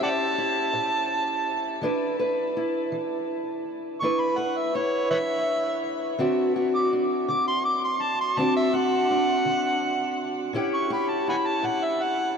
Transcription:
Already playing: steel-string acoustic guitar A2 C#4 E4
0.01 steel-string acoustic guitar G4, harmonica D5 F#5 A5
0.38 steel-string acoustic guitar E4
0.73 steel-string acoustic guitar A2
1.82 steel-string acoustic guitar E3 D4 E4 B4
2.19 steel-string acoustic guitar B4
2.57 steel-string acoustic guitar E4
2.92 steel-string acoustic guitar E3
4.01 steel-string acoustic guitar E3 D4 E4 B4, harmonica C#6
4.20 harmonica B5
4.38 steel-string acoustic guitar B4, harmonica F#5
4.58 harmonica E5
4.75 steel-string acoustic guitar E4, harmonica C#5
5.11 steel-string acoustic guitar E3, harmonica B4 C#5 E5
6.19 steel-string acoustic guitar D3 C4 D4 F#4
6.56 steel-string acoustic guitar F#4
6.75 harmonica D6
6.93 steel-string acoustic guitar D4
7.28 steel-string acoustic guitar D3, harmonica D6
7.48 harmonica C6
7.65 harmonica D6
7.84 harmonica C6
8.02 harmonica A5
8.21 harmonica C6
8.37 steel-string acoustic guitar D3 C4 D4 F#4, harmonica A5
8.56 harmonica E5
8.74 steel-string acoustic guitar F#4, harmonica F#5
9.11 steel-string acoustic guitar D4
9.45 steel-string acoustic guitar D3
10.53 steel-string acoustic guitar A2 C#4 E4 G4
10.74 harmonica C#6
10.90 steel-string acoustic guitar G4, harmonica B5
11.10 harmonica A5
11.28 steel-string acoustic guitar E4, harmonica F#5 G#5 B5
11.46 harmonica A5
11.63 steel-string acoustic guitar A2, harmonica F#5
11.84 harmonica E5
12.03 harmonica F#5

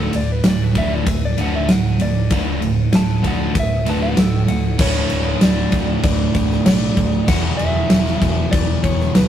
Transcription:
Already playing: fingered electric bass D1, overdriven electric guitar D2 A2 D3
0.00 lead electric guitar A4
0.13 fingered electric bass D1, overdriven electric guitar D2 A2, lead electric guitar D5, ride
0.32 lead electric guitar B4
0.44 fingered electric bass D1, overdriven electric guitar D2 A2, snare, ride
0.48 lead electric guitar D5
0.64 lead electric guitar B4
0.75 fingered electric bass D1, overdriven electric guitar D2 A2 D3, lead electric guitar E5, kick, ride
0.94 lead electric guitar D5
1.06 fingered electric bass D1, overdriven electric guitar D2 A2, lead electric guitar E5, kick, ride
1.25 lead electric guitar D5
1.37 fingered electric bass D1, overdriven electric guitar D2 A2 D3, lead electric guitar F#5, ride
1.55 lead electric guitar E5
1.68 overdriven electric guitar D2 A2, fingered electric bass D2, lead electric guitar F#5, snare, ride
1.99 fingered electric bass D1, overdriven electric guitar D2 A2, lead electric guitar D5, ride
2.30 fingered electric bass D1, overdriven electric guitar D2 A2 D3, kick, ride
2.61 overdriven electric guitar D2 A2, ride
2.92 fingered electric bass D1, overdriven electric guitar D2 A2, lead electric guitar A5, snare, ride
3.22 fingered electric bass D1, overdriven electric guitar D2 A2 D3, kick, ride
3.27 lead electric guitar F#5
3.54 fingered electric bass D1, overdriven electric guitar D2 A2, kick, ride
3.59 lead electric guitar E5
3.86 overdriven electric guitar D2 A2 D3, lead electric guitar B4, ride
3.90 lead electric guitar A5
4.02 lead electric guitar F#5
4.17 fingered electric bass D1, overdriven electric guitar D2 A2, lead electric guitar A4, snare, ride
4.47 fingered electric bass D1, overdriven electric guitar D2 A2, lead electric guitar F#5, ride
4.78 fingered electric bass D1, overdriven electric guitar D2 A2 D3, lead electric guitar C#5, kick, crash
5.10 fingered electric bass D1, crash
5.41 fingered electric bass D1, lead electric guitar D5, snare, crash
5.72 fingered electric bass D1, kick, crash
6.03 fingered electric bass D1, lead electric guitar D5, kick, crash
6.35 fingered electric bass D1, kick, crash
6.51 snare
6.66 fingered electric bass B1, lead electric guitar D5, snare, crash
6.97 fingered electric bass D1, kick, crash
7.27 fingered electric bass E1, overdriven electric guitar E2 B2 E3, lead electric guitar F#5, kick, crash
7.57 fingered electric bass E1, lead electric guitar E5, crash
7.90 fingered electric bass E1, snare, crash
8.06 snare
8.22 fingered electric bass E1, kick, crash
8.51 fingered electric bass E1, lead electric guitar D5, kick, crash
8.84 fingered electric bass E1, lead electric guitar C#5, kick, crash
8.99 snare
9.15 fingered electric bass D2, lead electric guitar B4, snare, crash

